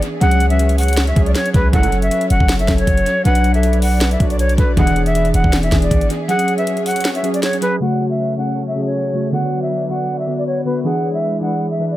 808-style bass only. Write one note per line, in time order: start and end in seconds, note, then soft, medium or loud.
0.21 1.13 C#2 loud
1.16 1.35 C#2 loud
1.54 1.73 C#2 loud
1.73 2.10 F#1 loud
2.30 2.40 F#1 loud
2.40 2.67 F#1 loud
2.68 2.86 F#1 loud
2.87 3.05 F#1 loud
3.25 4.16 B1 loud
4.20 4.57 B1 loud
4.58 4.76 B1 loud
4.77 5.32 E1 loud
5.34 5.44 E1 loud
5.44 5.71 E1 loud
5.72 5.90 E1 loud
5.91 6.09 G#1 loud